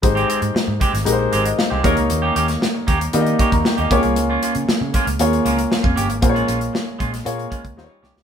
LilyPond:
<<
  \new Staff \with { instrumentName = "Grand piano" } { \time 4/4 \key aes \major \tempo 4 = 116 << { r2 r8 c''16 ees''16 f''16 g''8 r16 | r2 r8 des'''16 bes''16 g''16 ees''8 r16 | r1 | r1 | } \\ { <aes ees' g' c''>2 <aes ees' g' bes' c''>4. <bes ees' g' des''>8~ | <bes ees' g' des''>4. r8 <bes ees' g' d'' ees''>4. <bes f' aes' des''>8~ | <bes f' aes' des''>4. r8 <bes f' aes' des''>2 | <bes f' aes' c'' des''>2 <bes f' aes' des''>4 <g ees' f' c'' des''>4 | } >> }
  \new Staff \with { instrumentName = "Clean electric guitar" } { \time 4/4 \key aes \major r16 <aes c' g'>16 <aes c' g'>16 r8. <aes c' g'>16 r8. <aes c' g'>16 r8 <aes c' g'>16 <bes des' bes'>16 r16 | r16 <bes des' g'>16 <bes des' g'>16 r8. <bes des' g'>16 r8. <bes des' g'>16 r8 <bes des' g'>16 <bes des' g'>16 r16 | r16 <bes des' f'>16 <bes des' f'>16 r8. <bes des' f'>16 r8. <bes des' f'>16 r8 <bes des' f'>16 <bes des' g'>16 r16 | r16 <aes des' f'>16 <aes des' f'>16 r8. <aes des' f'>16 r8. <aes des' f'>16 r8 <g des' f'>16 <g des' g'>16 r16 | }
  \new Staff \with { instrumentName = "Fingered electric bass" } { \clef bass \time 4/4 \key aes \major aes,,8 r16 aes,16 r16 aes,16 r16 aes,,16 bes,,8 aes,,8 r16 c,16 ees,16 des,16 | ees,8 ees,8 r8 ees,8 ees8 r16 ees,16 r16 ees,16 des,16 c,16 | des,8 r16 des16 r16 des16 r16 des,16 ees,8 des,8 r16 f,16 g,,16 aes,,16 | bes,,8 bes,,8 r8 bes,,8 bes,8 r16 des,16 ees,16 r16 c,16 r16 | }
  \new DrumStaff \with { instrumentName = "Drums" } \drummode { \time 4/4 <hh bd>16 hh16 hh16 hh16 sn8 <hh bd>16 <hh sn>16 hh8 hh16 hh16 sn8 <hh bd>16 hh16 | hh8 hh16 <hh sn>16 sn8 <hh bd>16 hh16 hh16 hh16 <hh bd>16 <hh bd>16 sn16 hh16 <hh bd>16 hh16 | hh8 hh16 hh16 sn8 <hh bd>16 hh16 hh16 hh16 hh16 hh16 sn16 bd16 hh16 hh16 | <hh bd>16 hh16 hh16 hh16 sn8 <hh bd>16 <hh sn>16 hh16 hh16 <hh bd>16 <hh bd>16 sn8 sn16 sn16 | }
>>